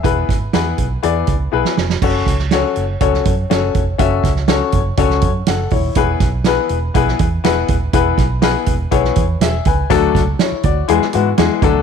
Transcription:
<<
  \new Staff \with { instrumentName = "Upright piano" } { \time 4/4 \key fis \minor \tempo 4 = 122 << { e''8 r2. r8 | r1 | r2. <a' fis''>8 <e' cis''>8~ | <e' cis''>8 r2. r8 |
r2. <gis' e''>8 <b' gis''>8~ | <b' gis''>8 r8 <e' cis''>8 <fis' d''>4 r4. | } \\ { <b e' gis' b'>8 r8 <b e' gis' b'>8 r8 <b e' gis' d''>8 r8 <b e' gis' b'>8 r8 | <cis' fis' a' cis''>8 r8 <cis' fis' a' cis''>8 r8 <cis' fis' a' cis''>8 r8 <cis' fis' a' cis''>8 r8 | <cis' fis' a' e''>8 r8 <cis' fis' a' cis''>8 r8 <cis' fis' a' cis''>8 r4. | <b e' gis' b'>8 r8 <b e' gis' b'>8 r8 <b e' gis' b'>8 r8 <b e' gis' b'>8 r8 |
<b e' gis' b'>8 r8 <b e' gis' b'>8 r8 <b e' gis' cis''>8 r4. | <fis a d' fis' a'>8 r4. <e gis b e' gis'>8 <e gis b e' fis'>8 <e gis b e' gis'>8 <fis a d' fis' a'>8 | } >> }
  \new Staff \with { instrumentName = "Fingered electric bass" } { \clef bass \time 4/4 \key fis \minor e,,8 gis,,8 e,8 b,,8 e,8 cis,8 b,,16 r16 f,,8 | fis,,8 cis,4 fis,,8 cis,8 fis,8 fis,,8 f,,8 | fis,,8 cis,4 fis,,8 cis,8 fis,8 fis,,8 dis,,8 | e,,8 b,,4 e,,8 b,,8 e,8 e,,8 dis,,8 |
e,,8 b,,4 e,,8 b,,8 e,8 e,,8 cis,8 | d,8 cis,8 r8 d,8 e,16 r16 gis,8 e,16 r16 d,16 cis,16 | }
  \new DrumStaff \with { instrumentName = "Drums" } \drummode { \time 4/4 <hh bd>8 <hh bd sn>8 <hh sn>8 <hh bd>8 hh8 <hh bd>8 r16 sn16 sn16 sn16 | <cymc bd>8 <hh bd sn>16 sn16 <hh sn>8 hh8 <hh bd>16 sn16 <hh bd>8 <hh sn>8 <hh bd>8 | <hh bd>8 <hh bd sn>16 sn16 <hh sn>8 <hh bd>8 <hh bd>16 sn16 <hh bd>8 <hh sn>8 <hho bd>8 | <hh bd>8 <hh bd sn>8 <hh sn>8 hh8 <hh bd>16 sn16 <hh bd>8 <hh sn>8 <hh bd>8 |
<hh bd>8 <hh bd sn>8 <hh sn>8 <hh bd>8 <hh bd>16 sn16 <hh bd>8 <hh sn>8 <hh bd>8 | <hh bd>8 <hh bd sn>8 <hh sn>8 <hh bd>8 hh16 sn16 hh8 <hh sn>8 <hh bd>8 | }
>>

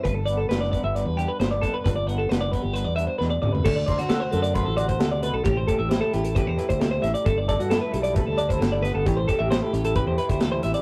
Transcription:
<<
  \new Staff \with { instrumentName = "Clean electric guitar" } { \time 4/4 \key g \major \tempo 4 = 133 b'16 a'16 d''16 a'16 b'16 d''16 d''16 e''16 d''16 b'16 g'16 b'16 c''16 d''16 a'16 b'16 | b'16 d''16 fis''16 a'16 b'16 d''16 b'16 g'16 b'16 d''16 e''16 c''16 b'16 d''16 d''16 b'16 | a'16 d''16 d''16 fis'16 a'16 c''16 a'16 d''16 b'16 a'16 d''16 c''16 a'16 d''16 b'16 a'16 | g'16 c''16 a'16 e''16 c''16 a'16 g'16 a'16 b'16 c''16 b'16 c''16 a'16 c''16 e''16 d''16 |
a'16 d''16 d''16 fis'16 a'16 b'16 a'16 d''16 b'16 a'16 d''16 c''16 a'16 d''16 b'16 a'16 | g'16 c''16 a'16 e''16 c''16 a'16 g'16 a'16 b'16 c''16 b'16 c''16 a'16 c''16 e''16 d''16 | }
  \new Staff \with { instrumentName = "Clean electric guitar" } { \time 4/4 \key g \major << { r4 d'4. d'4 d'8 | r4 d'4. d'4. | r8 c''8 fis'4 c''8 fis'4. | r8 g'8 e'4 g'8 e'4. |
r8 a'8 e'4 a'8 d'16 e'8. b8 | r8 g'8 e'4 g'8 e'4 c'8 | } \\ { g,8 b4 b8 g,4 b4 | g,8 b4 b8 g,4 b,8 c8 | d4. a4. c8 b,8 | a,4. a4. b,8 a,8 |
g,4. g4. d4 | a,4. a4. e4 | } >> }
  \new Staff \with { instrumentName = "Fingered electric bass" } { \clef bass \time 4/4 \key g \major g,,4 fis,,8 r16 g,,8 e,8 r16 g,,8 r8 | g,,4 fis,,8 r16 g,,8 e,8 r16 e,8 d,8 | d,8. d8 r16 fis,8. a,,8. d,8. b,,16 | a,,8 r16 a,,8 r16 a,,8. e,16 r16 d,8. a,,16 r16 |
g,,8. g,8 r16 b,,8. d,8. g,,8. g,,16 | a,,8 r16 a,,8 r16 a,,8. e,16 r16 d,8. a,,16 r16 | }
  \new DrumStaff \with { instrumentName = "Drums" } \drummode { \time 4/4 <hh bd>8 hh8 <hh sn>16 sn16 <hh bd>8 hh8 hh8 <hh sn>8 <hh bd>8 | <hh bd>8 hh8 <hh sn>8 <hh bd>8 hh8 hh8 sn8 toml16 tomfh16 | <cymc bd>8 <hh bd>16 hh16 <hh sn>8 hh16 hh16 <hh bd>8 hh16 <hh bd>16 <hh sn>8 hh8 | <hh bd>8 <hh bd>8 <hh sn>8 hh16 hh16 <hh bd>8 hh16 <hh bd>16 <hh sn>8 <hh sn>16 hh16 |
<hh bd>8 <hh bd>16 hh16 <hh sn>8 hh16 hh16 <hh bd>8 hh16 <hh bd>16 <hh sn>8 <hh sn>8 | <hh bd>8 <hh bd>8 <hh sn>8 hh16 hh16 <hh bd>8 hh16 <hh bd>16 <hh sn>8 <hh sn>16 hh16 | }
>>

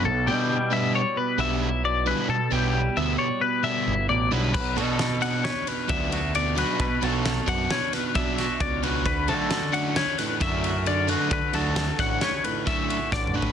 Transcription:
<<
  \new Staff \with { instrumentName = "Clean electric guitar" } { \time 5/4 \key g \lydian \tempo 4 = 133 a'8 g'4 e''8 cis''8 b'8 e''4 d''8 b'8 | a'8 g'4 e''8 cis''8 b'8 e''4 d''8 b'8 | b'8 a'4 fis''8 cis''8 b'8 e''4 d''8 b'8 | b'8 a'4 fis''8 cis''8 b'8 e''4 d''8 b'8 |
b'8 a'4 fis''8 cis''8 b'8 e''4 d''8 b'8 | b'8 a'4 fis''8 cis''8 b'8 e''4 d''8 b'8 | }
  \new Staff \with { instrumentName = "Clean electric guitar" } { \time 5/4 \key g \lydian << { r8 e'4 b8 d''4 b8 e'4 e'8 | r8 e'4 b8 d''4 b8 e'4 e'8 | r8 fis'4 d'8 b'4 d'8 fis'4 fis'8 | r8 fis'4 d'8 b'4 d'8 fis'4 fis'8 |
r8 fis'4 cis'8 b'4 cis'8 fis'4 fis'8 | r8 fis'4 cis'8 b'4 cis'8 fis'4 fis'8 | } \\ { b,4 g4. b,4. b,4 | b,4 g4. b,4. b,4 | b,4 fis4. b,4. b,4 | b,4 fis4. b,4. b,4 |
d4 fis4. a,4. d4 | d4 fis4. a,4. d4 | } >> }
  \new Staff \with { instrumentName = "Overdriven electric guitar" } { \clef bass \time 5/4 \key g \lydian r8 <b, g b d'>8 r8 <b, g b d'>8 r4 <b, g b d'>8 r4 <b, g b d'>8 | r8 <b, g b d'>8 r8 <b, g b d'>8 r4 <b, g b d'>8 r4 <b, g b d'>8 | r8 <b, fis b d'>8 r8 <b, fis b d'>8 r4 <b, fis b d'>8 r4 <b, fis b d'>8 | r8 <b, fis b d'>8 r8 <b, fis b d'>8 r4 <b, fis b d'>8 r4 <b, fis b d'>8 |
r8 <d fis a d'>8 r8 <d fis a d'>8 r4 <d fis a d'>8 r4 <d fis a d'>8 | r8 <d fis a d'>8 r8 <d fis a d'>8 r4 <d fis a d'>8 r4 <d fis a d'>8 | }
  \new Staff \with { instrumentName = "Picked electric bass" } { \clef bass \time 5/4 \key g \lydian b,,8 b,2 r8 b,,2 | b,8 b,,4 d,8 r4. g,,8 a,,8 b,,8 | b,,8 b,2 r8 d,2 | b,8 b,,4 fis,8 r2 cis,4 |
d,8 d2 r8 fis,2 | d8 d,4 a,,8 r2 a,,4 | }
  \new DrumStaff \with { instrumentName = "Drums" } \drummode { \time 5/4 r4 r4 r4 r4 r4 | r4 r4 r4 r4 r4 | <cymc bd>8 cymr8 <cymr sn>8 cymr8 <cymr sn>8 cymr8 <bd cymr>8 cymr8 cymr8 cymr8 | <bd cymr>8 cymr8 <cymr sn>8 <bd cymr>8 <cymr sn>8 <cymr sn>8 <bd cymr>8 <cymr sn>8 <bd cymr>8 cymr8 |
<bd cymr>8 cymr8 <cymr sn>8 cymr8 <cymr sn>8 <cymr sn>8 <bd cymr sn>8 cymr8 cymr8 cymr8 | <bd cymr>8 cymr8 <cymr sn>8 <bd cymr sn>8 <cymr sn>8 cymr8 <bd cymr sn>8 cymr8 \tuplet 3/2 { <bd sn>8 toml8 tomfh8 } | }
>>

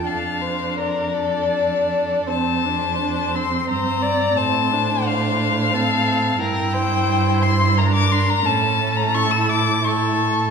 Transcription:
<<
  \new Staff \with { instrumentName = "Violin" } { \time 3/4 \key f \major \tempo 4 = 86 f''4 d''2 | a''4. c'''8 bes''4 | a''4 f''2 | g''4. c'''8 bes''16 d'''16 c'''16 bes''16 |
a''8. bes''16 cis'''16 e'''16 d'''8 cis'''4 | }
  \new Staff \with { instrumentName = "Violin" } { \time 3/4 \key f \major a'8 c''8 bes'8 a'8 a'4 | c''2 c''8 d''8 | c''2 a'4 | bes'8 c''4. bes'4 |
a'2 a'4 | }
  \new Staff \with { instrumentName = "Viola" } { \time 3/4 \key f \major d'2. | c'8 d'8 d'8 c'4. | c'8 d'4. c'4 | e'2 d'4 |
cis'4 e'4 e'4 | }
  \new Staff \with { instrumentName = "Cello" } { \clef bass \time 3/4 \key f \major f,2. | f,2 g,4 | a,2. | g,2. |
a,2. | }
>>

